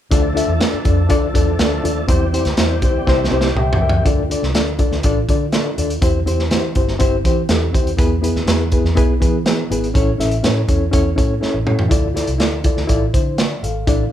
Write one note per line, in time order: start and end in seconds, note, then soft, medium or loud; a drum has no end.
0.11 0.42 D2 medium
0.11 2.07 F3 medium
0.11 2.07 A3 medium
0.11 0.27 D4 medium
0.11 2.07 D4 medium
0.11 0.28 F4 medium
0.11 2.07 A4 medium
0.11 0.28 A4 medium
0.11 0.28 D5 medium
0.11 kick loud
0.11 closed hi-hat medium
0.34 0.51 D4 medium
0.34 0.52 F4 medium
0.34 0.52 A4 medium
0.34 0.52 E5 medium
0.34 closed hi-hat medium
0.48 0.59 E2 medium
0.60 0.76 D4 medium
0.60 0.77 F4 medium
0.60 0.77 A4 medium
0.60 0.77 D5 medium
0.60 snare loud
0.60 closed hi-hat medium
0.73 muted fingered electric bass stroke soft
0.85 1.10 F2 medium
0.85 1.01 D4 medium
0.85 1.01 F4 medium
0.85 1.02 A4 medium
0.85 1.02 D5 medium
0.85 kick medium
0.85 closed hi-hat medium
1.09 1.30 D2 loud
1.09 1.26 D4 loud
1.09 1.26 F4 medium
1.09 1.26 A4 loud
1.09 1.26 D5 loud
1.09 kick medium
1.09 closed hi-hat medium
1.34 1.55 E2 medium
1.34 1.50 D4 medium
1.34 1.51 F4 medium
1.34 1.51 A4 medium
1.34 1.51 D5 medium
1.34 kick medium
1.34 closed hi-hat medium
1.59 1.79 D2 medium
1.59 1.75 D4 medium
1.59 1.75 F4 medium
1.59 1.76 A4 medium
1.59 1.76 D5 medium
1.59 snare loud
1.59 closed hi-hat medium
1.83 2.04 D#2 medium
1.83 1.99 D4 medium
1.83 2.00 F4 medium
1.83 2.00 A4 medium
1.83 2.01 D5 medium
1.83 closed hi-hat medium
2.08 2.39 E2 medium
2.08 4.03 E3 medium
2.08 4.04 G3 medium
2.08 2.24 C4 medium
2.08 4.03 C4 medium
2.08 2.25 E4 medium
2.08 4.03 G4 medium
2.08 2.25 G4 medium
2.08 2.25 C5 loud
2.08 kick loud
2.08 closed hi-hat medium
2.33 2.49 C4 medium
2.33 2.49 E4 medium
2.33 2.50 G4 medium
2.33 2.50 C5 medium
2.33 closed hi-hat medium
2.45 2.56 D2 medium
2.45 snare soft
2.45 closed hi-hat soft
2.57 2.82 E2 medium
2.57 2.74 C4 medium
2.57 2.74 E4 medium
2.57 2.74 G4 medium
2.57 2.75 C5 medium
2.57 snare loud
2.57 closed hi-hat medium
2.82 3.02 D2 medium
2.82 2.98 C4 medium
2.82 2.99 E4 medium
2.82 2.99 G4 medium
2.82 2.99 C5 medium
2.82 kick medium
2.82 closed hi-hat medium
3.07 3.27 C2 medium
3.07 3.23 C4 loud
3.07 3.23 E4 medium
3.07 3.23 G4 medium
3.07 3.24 C5 loud
3.07 kick medium
3.07 snare medium
3.25 snare medium
3.31 3.51 C2 medium
3.31 3.47 C4 medium
3.31 3.48 E4 medium
3.31 3.48 G4 medium
3.31 3.48 C5 medium
3.41 snare medium
3.55 3.76 C2 medium
3.55 3.81 G4 soft
3.55 3.80 E5 medium
3.55 3.80 G5 medium
3.55 mid tom medium
3.73 floor tom medium
3.80 4.00 C#2 medium
3.80 4.28 A#4 soft
3.80 4.04 E5 medium
3.80 4.28 G5 medium
3.89 floor tom medium
4.05 4.36 D2 medium
4.05 4.21 D4 medium
4.05 4.22 F4 medium
4.05 4.22 A4 medium
4.05 4.22 D5 medium
4.05 kick loud
4.05 closed hi-hat medium
4.30 4.46 D4 medium
4.30 4.46 F4 medium
4.30 4.46 A4 medium
4.30 4.47 D5 medium
4.30 closed hi-hat medium
4.42 4.52 C2 medium
4.42 snare soft
4.54 4.70 D4 medium
4.54 4.70 F4 medium
4.54 4.71 A4 medium
4.54 4.71 D5 medium
4.54 snare medium
4.54 closed hi-hat medium
4.78 4.95 D4 medium
4.78 4.95 F4 medium
4.78 4.95 A4 medium
4.78 4.95 D5 medium
4.78 kick medium
4.78 closed hi-hat medium
4.92 5.01 D2 medium
4.92 snare soft
5.03 5.24 A1 medium
5.03 5.20 D4 loud
5.03 5.20 F4 medium
5.03 5.21 A4 medium
5.03 5.21 D5 loud
5.03 kick medium
5.03 closed hi-hat medium
5.28 5.68 D3 medium
5.28 5.44 D4 medium
5.28 5.45 F4 medium
5.28 5.45 A4 medium
5.28 5.45 D5 medium
5.28 kick medium
5.28 closed hi-hat medium
5.52 5.69 D4 medium
5.52 5.69 F4 medium
5.52 5.69 A4 medium
5.52 5.70 D5 medium
5.52 snare medium
5.52 closed hi-hat medium
5.77 5.98 D#2 medium
5.77 5.93 D4 medium
5.77 5.94 F4 medium
5.77 5.94 A4 medium
5.77 5.94 D5 medium
5.77 closed hi-hat medium
5.90 closed hi-hat soft
6.02 6.22 E2 medium
6.02 6.18 C4 medium
6.02 6.18 E4 medium
6.02 6.18 G4 medium
6.02 6.19 C5 medium
6.02 kick loud
6.02 closed hi-hat medium
6.26 6.53 E2 medium
6.26 6.42 C4 medium
6.26 6.43 E4 medium
6.26 6.43 G4 medium
6.26 6.43 C5 medium
6.26 closed hi-hat medium
6.39 snare soft
6.51 6.71 E3 medium
6.51 6.67 C4 medium
6.51 6.67 E4 medium
6.51 6.67 G4 medium
6.51 6.68 C5 medium
6.51 snare loud
6.51 closed hi-hat medium
6.75 6.96 G1 medium
6.75 6.91 C4 medium
6.75 6.92 E4 medium
6.75 6.92 G4 medium
6.75 6.92 C5 medium
6.75 kick medium
6.75 closed hi-hat medium
6.88 snare soft
6.99 7.20 G1 medium
6.99 7.16 C4 loud
6.99 7.16 E4 medium
6.99 7.16 G4 medium
6.99 7.16 C5 loud
6.99 kick medium
6.99 closed hi-hat medium
7.24 7.45 E3 medium
7.24 7.40 C4 medium
7.24 7.41 E4 medium
7.24 7.41 G4 medium
7.24 7.42 C5 medium
7.24 kick medium
7.24 closed hi-hat medium
7.49 7.69 E2 medium
7.49 7.65 C4 medium
7.49 7.65 E4 medium
7.49 7.66 G4 medium
7.49 7.66 A4 medium
7.49 snare medium
7.49 closed hi-hat medium
7.73 7.94 D#2 medium
7.73 7.89 C4 medium
7.73 7.90 E4 medium
7.73 7.90 G4 medium
7.73 7.91 C5 medium
7.73 kick medium
7.73 closed hi-hat medium
7.87 closed hi-hat soft
7.97 8.29 E2 loud
7.97 8.14 B3 medium
7.97 8.14 E4 medium
7.97 8.14 G#4 medium
7.97 8.15 B4 loud
7.97 kick loud
7.97 closed hi-hat medium
8.21 8.38 B3 medium
8.21 8.39 E4 medium
8.21 8.39 G#4 medium
8.21 8.39 B4 medium
8.21 closed hi-hat medium
8.35 8.45 D#2 medium
8.35 snare soft
8.46 8.77 E2 medium
8.46 8.63 B3 medium
8.46 8.63 E4 medium
8.46 8.63 G#4 medium
8.46 8.64 B4 medium
8.46 snare loud
8.46 closed hi-hat medium
8.71 8.88 B3 medium
8.71 8.88 E4 medium
8.71 8.88 G#4 medium
8.71 8.89 B4 medium
8.71 kick medium
8.71 closed hi-hat medium
8.84 8.94 E2 medium
8.84 snare soft
8.95 9.17 B1 medium
8.95 9.12 B3 loud
8.95 9.12 E4 medium
8.95 9.12 G#4 medium
8.95 9.13 B4 loud
8.95 kick medium
8.95 closed hi-hat medium
9.20 9.61 E3 medium
9.20 9.37 B3 medium
9.20 9.37 E4 medium
9.20 9.37 G#4 medium
9.20 9.38 B4 medium
9.20 kick medium
9.20 closed hi-hat medium
9.45 9.61 B3 medium
9.45 9.62 E4 medium
9.45 9.62 G#4 medium
9.45 9.63 B4 medium
9.45 snare loud
9.45 closed hi-hat medium
9.70 9.90 G#1 medium
9.70 9.86 B3 medium
9.70 9.86 E4 medium
9.70 9.87 G#4 medium
9.70 9.87 B4 medium
9.70 closed hi-hat medium
9.84 closed hi-hat soft
9.94 10.15 A1 medium
9.94 10.10 C#4 medium
9.94 10.11 E4 medium
9.94 10.11 A4 medium
9.94 10.11 C#5 loud
9.94 kick loud
9.94 closed hi-hat medium
10.18 10.39 A1 medium
10.18 10.35 C#4 medium
10.18 10.35 E4 medium
10.18 10.36 A4 medium
10.18 10.36 E5 medium
10.18 snare soft
10.18 closed hi-hat medium
10.31 closed hi-hat soft
10.43 10.64 A2 medium
10.43 10.59 C#4 medium
10.43 10.60 E4 medium
10.43 10.60 A4 medium
10.43 10.60 C#5 medium
10.43 snare loud
10.43 closed hi-hat medium
10.68 10.88 E2 medium
10.68 10.84 C#4 medium
10.68 10.85 E4 medium
10.68 10.85 A4 medium
10.68 10.85 C#5 medium
10.68 kick medium
10.68 closed hi-hat medium
10.91 11.13 E2 medium
10.91 11.08 C#4 loud
10.91 11.08 E4 medium
10.91 11.09 A4 medium
10.91 11.09 C#5 loud
10.91 kick medium
10.91 closed hi-hat medium
11.16 11.38 A2 medium
11.16 11.33 C#4 medium
11.16 11.33 E4 medium
11.16 11.33 A4 medium
11.16 11.34 C#5 medium
11.16 kick medium
11.16 closed hi-hat medium
11.40 11.57 C#4 medium
11.40 11.57 E4 medium
11.40 11.58 A4 medium
11.40 11.58 C#5 medium
11.40 muted fingered electric bass stroke soft
11.40 snare soft
11.54 11.64 A1 medium
11.65 11.86 A2 medium
11.65 11.82 C#4 medium
11.65 11.82 E4 medium
11.65 11.82 A4 medium
11.65 11.83 C#5 medium
11.65 mid tom medium
11.79 floor tom medium
11.89 12.21 D2 medium
11.89 12.06 E4 medium
11.89 12.07 F4 medium
11.89 12.07 A4 medium
11.89 12.07 D5 medium
11.89 kick loud
11.89 closed hi-hat medium
12.14 12.31 E4 medium
12.14 12.31 F4 medium
12.14 12.32 A4 medium
12.14 12.32 D5 medium
12.14 snare soft
12.14 closed hi-hat medium
12.27 12.38 C2 medium
12.27 closed hi-hat soft
12.38 12.55 E4 medium
12.38 12.56 F4 medium
12.38 12.56 A4 medium
12.38 12.56 D5 medium
12.38 snare loud
12.38 closed hi-hat medium
12.64 12.80 E4 medium
12.64 12.80 F4 medium
12.64 12.81 A4 medium
12.64 12.81 D5 medium
12.64 kick medium
12.64 closed hi-hat medium
12.77 12.87 D2 medium
12.77 snare soft
12.87 13.09 A1 medium
12.87 13.04 E4 loud
12.87 13.05 F4 medium
12.87 13.05 A4 medium
12.87 13.05 D5 loud
12.87 kick medium
12.87 closed hi-hat medium
13.14 13.54 D3 medium
13.14 13.37 E4 medium
13.14 13.37 C5 medium
13.14 kick medium
13.14 closed hi-hat medium
13.38 13.62 F4 soft
13.38 13.62 D5 medium
13.38 snare loud
13.38 closed hi-hat medium
13.63 13.83 G#1 medium
13.63 13.87 A4 soft
13.63 14.10 F5 medium
13.63 closed hi-hat medium
13.87 14.07 A1 loud
13.87 14.03 D4 medium
13.87 14.03 E4 medium
13.87 14.04 A4 medium
13.87 14.04 D5 medium
13.87 kick medium
13.87 closed hi-hat medium